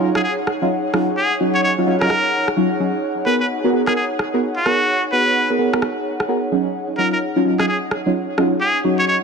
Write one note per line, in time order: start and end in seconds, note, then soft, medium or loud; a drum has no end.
0.00 0.10 F#3 medium
0.00 0.10 C#4 medium
0.00 9.23 D#4 medium
0.00 0.10 D#4 medium
0.00 0.10 F4 medium
0.00 9.23 G#4 medium
0.00 9.23 C#5 medium
0.00 9.23 F#5 medium
0.15 0.21 F#3 medium
0.15 0.21 C#4 medium
0.15 0.21 D#4 medium
0.15 0.21 F4 medium
0.15 0.21 G#4 medium
0.15 cross-stick medium
0.24 0.33 G#4 medium
0.47 cross-stick soft
0.62 0.67 F#3 medium
0.62 0.67 C#4 medium
0.62 0.67 D#4 medium
0.62 0.67 F4 loud
0.94 1.09 F#3 medium
0.94 1.09 C#4 medium
0.94 1.09 D#4 medium
0.94 1.09 F4 loud
0.94 cross-stick medium
1.17 1.35 G#4 medium
1.40 1.75 F#3 medium
1.40 1.75 C#4 medium
1.40 1.75 D#4 medium
1.40 1.75 F#4 medium
1.55 1.60 C#5 medium
1.64 1.73 C#5 medium
1.78 1.85 F#3 medium
1.78 1.85 C#4 medium
1.78 1.85 D#4 medium
1.78 1.85 F4 medium
1.87 1.96 F#3 medium
1.87 1.96 C#4 medium
1.87 1.96 D#4 medium
1.87 1.96 F4 medium
2.01 2.07 F#3 medium
2.01 2.07 C#4 medium
2.01 2.07 D#4 medium
2.01 2.07 F4 loud
2.01 2.48 A#4 medium
2.01 cross-stick medium
2.10 cross-stick medium
2.48 cross-stick soft
2.57 2.66 F#3 medium
2.57 2.66 C#4 medium
2.57 2.66 D#4 medium
2.57 2.66 F4 medium
2.80 2.95 F#3 medium
2.80 2.95 C#4 medium
2.80 2.95 D#4 medium
2.80 2.95 G#4 medium
3.26 3.41 B3 medium
3.26 3.41 F#4 medium
3.26 3.41 G#4 medium
3.26 3.41 A#4 medium
3.26 3.35 B4 medium
3.41 3.46 B4 medium
3.64 3.70 B3 medium
3.64 3.70 F#4 medium
3.64 3.70 G#4 medium
3.64 3.70 A#4 loud
3.73 3.82 B3 medium
3.73 3.82 F#4 medium
3.73 3.82 G#4 medium
3.73 3.82 A#4 medium
3.87 3.93 B3 medium
3.87 3.93 F#4 medium
3.87 3.93 G#4 medium
3.87 3.93 A#4 medium
3.87 cross-stick medium
3.96 4.05 G#4 medium
4.19 cross-stick soft
4.34 4.39 B3 medium
4.34 4.39 F#4 medium
4.34 4.39 G#4 medium
4.34 4.39 A#4 loud
4.57 5.04 F#4 medium
4.66 4.81 B3 medium
4.66 4.81 F#4 medium
4.66 4.81 G#4 medium
4.66 4.81 A#4 medium
4.66 cross-stick soft
5.12 5.47 B3 medium
5.12 5.47 F#4 medium
5.12 5.47 G#4 medium
5.12 5.47 B4 medium
5.12 5.50 B4 medium
5.50 5.57 B3 medium
5.50 5.57 F#4 medium
5.50 5.57 G#4 medium
5.50 5.57 A#4 medium
5.59 5.68 B3 medium
5.59 5.68 F#4 medium
5.59 5.68 G#4 medium
5.59 5.68 A#4 loud
5.73 5.79 B3 medium
5.73 5.79 F#4 medium
5.73 5.79 G#4 medium
5.73 5.79 A#4 loud
5.73 cross-stick medium
5.82 cross-stick medium
6.20 cross-stick soft
6.28 6.38 B3 medium
6.28 6.38 F#4 medium
6.28 6.38 G#4 medium
6.28 6.38 A#4 medium
6.52 6.67 F#3 medium
6.52 6.67 C#4 medium
6.52 6.67 D#4 medium
6.52 6.67 G#4 medium
6.98 7.13 F#3 medium
6.98 7.13 C#4 medium
6.98 7.13 D#4 medium
6.98 7.13 F4 medium
6.98 7.08 A#4 medium
7.13 7.18 A#4 medium
7.36 7.42 F#3 medium
7.36 7.42 C#4 medium
7.36 7.42 D#4 medium
7.36 7.42 F4 loud
7.45 7.54 F#3 medium
7.45 7.54 C#4 medium
7.45 7.54 D#4 medium
7.45 7.54 F4 medium
7.59 7.65 F#3 medium
7.59 7.65 C#4 medium
7.59 7.65 D#4 medium
7.59 7.65 F4 medium
7.59 7.65 G#4 medium
7.59 cross-stick medium
7.68 7.77 G#4 medium
7.91 cross-stick soft
8.06 8.12 F#3 medium
8.06 8.11 C#4 medium
8.06 8.12 D#4 medium
8.06 8.12 F4 loud
8.38 8.53 F#3 medium
8.38 8.53 C#4 medium
8.38 8.53 D#4 medium
8.38 8.53 F4 loud
8.38 cross-stick medium
8.61 8.79 G#4 medium
8.84 9.19 F#3 medium
8.84 9.19 C#4 medium
8.84 9.19 D#4 medium
8.84 9.19 F#4 medium
8.99 9.05 C#5 medium
9.08 9.17 C#5 medium